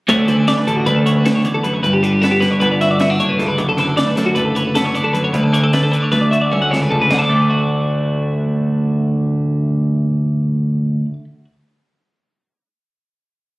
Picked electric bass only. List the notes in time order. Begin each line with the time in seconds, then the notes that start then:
0.09 D2
0.28 D2
0.67 A1
0.87 D2
1.84 G1
2.61 G1
3.19 F#1
3.39 C#2
3.59 F#1
3.78 F#1
4.18 F#2
4.36 F#1
5.35 D2
6.13 D2
6.71 C#2
6.92 C#2
7.11 D2